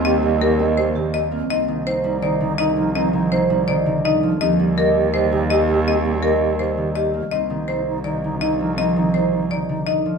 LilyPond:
<<
  \new Staff \with { instrumentName = "Marimba" } { \time 4/4 \key c \minor \tempo 4 = 165 ees''8 r8 bes'8 r8 c''8 r8 ees''8 r8 | ees''8 r8 c''8 r8 d''8 r8 ees''8 r8 | ees''8 r8 c''8 r8 d''8 r8 ees''8 r8 | ees''8 r8 bes'8 r8 c''8 r8 ees''8 r8 |
ees''8 r8 bes'8 r8 c''8 r8 ees''8 r8 | ees''8 r8 c''8 r8 d''8 r8 ees''8 r8 | ees''8 r8 c''8 r8 d''8 r8 ees''8 r8 | }
  \new Staff \with { instrumentName = "Vibraphone" } { \time 4/4 \key c \minor r8 ees''8 r8 ees''8 r8 g'8 r8 c'8 | c'8 r8 c''8 r8 c''8 r8 ees'8 r8 | c'8 r8 c''8 r8 c''8 r8 ees'8 r8 | c'8 r8 ees''8 r8 ees''8 r8 g'8 r8 |
c'8 r8 ees''8 r8 ees''8 r8 g'8 r8 | c'8 r8 c''8 r4. ees'8 r8 | c'8 r8 c''8 r4. ees'8 r8 | }
  \new Staff \with { instrumentName = "Alto flute" } { \time 4/4 \key c \minor g'8 g'8 g'8 g'8 g'8 g'8 g'8 r8 | ees'8 ees'8 ees'8 ees'8 ees'8 ees'8 ees'8 ees'8 | ees'8 ees'8 ees'8 ees'8 ees'8 ees'8 ees'8 r8 | g'8 g'8 g'8 g'8 g'8 g'8 g'8 g'8 |
g'8 g'8 g'8 g'8 g'8 g'8 g'8 r8 | ees'8 ees'8 ees'8 ees'8 ees'8 ees'8 ees'8 ees'8 | ees'8 ees'8 ees'8 ees'8 ees'8 ees'8 ees'8 r8 | }
  \new Staff \with { instrumentName = "Harp" } { \clef bass \time 4/4 \key c \minor <ees g bes c' ees' g'>8 g4 c'8 g8 ees4 bes8 | c'8 ees8 c'8 g8 ees8 d4 f8 | c'8 ees8 c'8 g8 ees8 d4 f8 | ees'8 g8 g'4 g8 ees4 bes8~ |
bes8 g4. g8 ees4 bes8 | c'8 ees8 c'4 ees8 d4 f8 | c'8 ees8 c'4 ees8 d4 f8 | }
  \new Staff \with { instrumentName = "Cello" } { \clef bass \time 4/4 \key c \minor ees,1 | c,1~ | c,1 | ees,1~ |
ees,1 | c,1~ | c,1 | }
>>